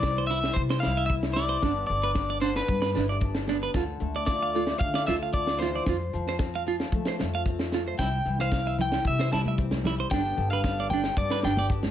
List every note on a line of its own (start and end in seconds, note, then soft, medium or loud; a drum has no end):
0.00 0.48 C2 medium
0.00 0.30 E3 medium
0.00 0.27 D5 medium
0.00 kick medium
0.00 snare medium
0.00 maracas medium
0.05 1.09 C4 medium
0.17 0.25 C5 medium
0.17 maracas soft
0.27 1.60 E3 medium
0.27 0.38 E4 medium
0.27 0.53 E5 medium
0.27 maracas medium
0.44 snare medium
0.53 0.80 C3 medium
0.53 0.61 C5 medium
0.53 kick medium
0.53 maracas medium
0.59 1.37 G3 medium
0.70 0.78 C5 medium
0.70 snare medium
0.70 maracas soft
0.80 0.91 E4 medium
0.80 1.06 F5 loud
0.80 snare medium
0.80 maracas medium
0.85 1.54 C2 medium
0.85 1.64 E4 medium
0.97 1.05 E5 medium
0.97 maracas soft
1.06 1.14 E5 loud
1.06 kick medium
1.11 1.60 C4 medium
1.11 maracas loud
1.23 snare medium
1.33 1.44 E4 medium
1.33 1.84 D5 medium
1.33 snare medium
1.33 maracas medium
1.38 1.64 G3 medium
1.49 1.57 C5 medium
1.62 1.86 G1 medium
1.62 3.72 G2 medium
1.62 1.88 D3 medium
1.62 2.68 B3 soft
1.62 1.71 D4 medium
1.62 2.16 D4 medium
1.62 kick medium
1.62 snare medium
1.62 maracas loud
1.67 2.97 G4 medium
1.76 maracas soft
1.87 2.60 G1 medium
1.87 2.41 D3 medium
1.87 2.37 D5 medium
1.87 maracas medium
2.03 2.11 B4 medium
2.03 maracas soft
2.15 3.22 D4 medium
2.15 kick medium
2.15 snare medium
2.15 maracas medium
2.30 2.37 D5 medium
2.30 maracas soft
2.41 3.75 D3 medium
2.41 2.50 D4 medium
2.41 2.55 C5 medium
2.41 snare soft
2.41 maracas medium
2.56 3.06 B4 medium
2.56 snare medium
2.68 2.92 G2 medium
2.68 3.49 B3 medium
2.68 kick medium
2.68 maracas medium
2.82 2.89 B4 medium
2.82 snare medium
2.82 maracas soft
2.94 3.67 G1 loud
2.94 3.03 D4 medium
2.94 3.11 E4 medium
2.94 snare medium
2.94 maracas medium
3.08 3.76 G4 medium
3.08 3.17 D5 medium
3.08 maracas soft
3.20 3.73 D4 medium
3.20 kick medium
3.20 maracas loud
3.35 snare medium
3.47 3.73 B3 medium
3.47 3.57 D4 medium
3.47 snare medium
3.47 maracas medium
3.62 3.70 B4 medium
3.62 maracas soft
3.74 3.98 D2 medium
3.74 5.34 D3 medium
3.74 3.83 F4 medium
3.74 kick medium
3.74 snare medium
3.74 maracas loud
3.89 maracas soft
4.00 4.72 D2 medium
4.00 4.54 A3 medium
4.00 maracas medium
4.15 4.23 D5 medium
4.15 maracas soft
4.26 5.08 F4 medium
4.26 4.79 D5 medium
4.26 kick medium
4.26 snare medium
4.26 maracas medium
4.41 4.50 F5 medium
4.41 maracas soft
4.54 5.84 A3 medium
4.54 4.63 F4 medium
4.54 maracas medium
4.67 snare medium
4.79 5.04 D3 medium
4.79 5.85 D4 medium
4.79 5.07 F5 loud
4.79 kick medium
4.79 maracas loud
4.94 5.02 D5 medium
4.94 snare medium
4.94 maracas soft
5.07 5.78 D2 medium
5.07 5.16 F4 medium
5.07 5.85 F4 medium
5.07 5.14 E5 loud
5.07 snare medium
5.07 maracas medium
5.21 5.30 F5 medium
5.21 maracas soft
5.33 5.61 D3 medium
5.33 5.59 D5 medium
5.33 kick medium
5.33 maracas loud
5.47 snare medium
5.59 5.88 E3 medium
5.59 5.70 F4 medium
5.59 7.15 C5 medium
5.59 snare medium
5.59 maracas medium
5.74 5.83 D5 medium
5.74 maracas soft
5.86 6.10 F2 medium
5.86 5.96 F4 medium
5.86 muted steel-string acoustic guitar stroke medium
5.86 kick medium
5.86 snare medium
5.86 maracas loud
6.02 maracas soft
6.13 6.84 F2 medium
6.13 6.65 F3 medium
6.13 maracas medium
6.27 6.36 C5 medium
6.27 snare soft
6.39 7.46 C4 medium
6.39 kick medium
6.39 snare medium
6.39 maracas medium
6.55 6.62 F5 medium
6.67 7.96 F3 medium
6.67 6.75 F4 medium
6.67 maracas medium
6.80 snare medium
6.80 maracas soft
6.92 7.16 F3 medium
6.92 7.73 A3 medium
6.92 kick medium
6.92 maracas medium
7.05 7.15 C5 medium
7.05 snare medium
7.19 7.90 F2 loud
7.19 7.97 F4 medium
7.19 muted clean electric guitar stroke medium
7.19 snare medium
7.19 maracas medium
7.34 7.42 F5 medium
7.34 maracas soft
7.46 7.97 C4 medium
7.46 kick medium
7.46 maracas medium
7.59 snare medium
7.59 maracas soft
7.72 7.97 A3 medium
7.72 7.82 F4 medium
7.72 snare medium
7.72 maracas medium
7.88 7.95 C5 medium
7.99 8.23 C2 medium
7.99 8.26 C3 medium
7.99 8.07 E4 medium
7.99 8.40 G5 medium
7.99 kick medium
7.99 snare medium
7.99 maracas medium
8.13 maracas soft
8.25 8.96 C2 medium
8.25 8.77 E3 medium
8.25 maracas medium
8.39 8.48 C5 medium
8.39 8.77 F5 medium
8.39 snare soft
8.39 maracas soft
8.52 9.58 C4 medium
8.52 kick medium
8.52 snare medium
8.52 maracas medium
8.67 8.74 E5 medium
8.67 maracas soft
8.78 10.08 E3 medium
8.78 9.07 G5 medium
8.78 muted clean electric guitar stroke medium
8.78 low conga medium
8.78 maracas medium
8.92 snare medium
9.05 9.29 C3 medium
9.05 9.82 G3 medium
9.05 9.32 E5 medium
9.05 kick medium
9.05 maracas medium
9.19 9.28 C5 medium
9.19 snare medium
9.19 maracas soft
9.31 10.02 C2 medium
9.31 9.41 E4 medium
9.31 10.08 G4 medium
9.31 9.40 A5 medium
9.31 snare medium
9.31 maracas medium
9.45 9.55 E5 medium
9.45 high conga medium
9.45 maracas soft
9.58 10.09 C4 medium
9.58 kick medium
9.58 maracas loud
9.71 snare medium
9.71 high conga medium
9.84 10.11 G3 medium
9.84 9.94 E4 medium
9.84 snare medium
9.84 low conga medium
9.84 maracas medium
10.00 10.07 C5 medium
10.00 maracas soft
10.11 10.35 G1 medium
10.11 11.91 G2 medium
10.11 10.36 D3 medium
10.11 11.15 B3 medium
10.11 10.63 D4 medium
10.11 10.21 D4 medium
10.11 11.43 G4 medium
10.11 10.50 G5 loud
10.11 kick medium
10.11 snare medium
10.11 maracas loud
10.28 maracas soft
10.37 11.08 G1 medium
10.37 10.89 D3 medium
10.37 maracas medium
10.51 10.60 B4 medium
10.51 10.90 F5 medium
10.55 maracas soft
10.63 11.68 D4 medium
10.63 kick medium
10.63 snare medium
10.63 maracas medium
10.80 10.87 D5 medium
10.80 maracas soft
10.90 11.91 D3 medium
10.90 11.00 D4 medium
10.90 11.15 G5 medium
10.90 high conga medium
10.90 low conga medium
10.90 maracas medium
11.04 snare medium
11.16 11.40 G2 medium
11.16 11.91 B3 medium
11.16 11.42 D5 medium
11.16 kick medium
11.16 maracas medium
11.30 11.39 B4 medium
11.30 snare medium
11.43 11.91 G1 medium
11.43 11.52 D4 medium
11.43 11.91 G4 medium
11.43 11.69 G5 medium
11.43 snare medium
11.43 maracas medium
11.57 11.66 D5 medium
11.57 high conga medium
11.57 maracas soft
11.69 11.91 D4 medium
11.69 kick medium
11.69 maracas medium
11.83 snare medium
11.83 high conga medium